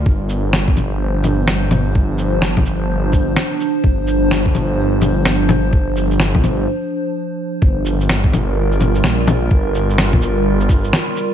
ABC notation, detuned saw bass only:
X:1
M:4/4
L:1/8
Q:"Swing 16ths" 1/4=127
K:Gm
V:1 name="Detuned saw bass" clef=bass
G,,,6 G,,,2 | G,,,6 z2 | G,,,6 G,,,2 | G,,,4 z4 |
G,,,6 B,,,2 | G,,,6 z2 |]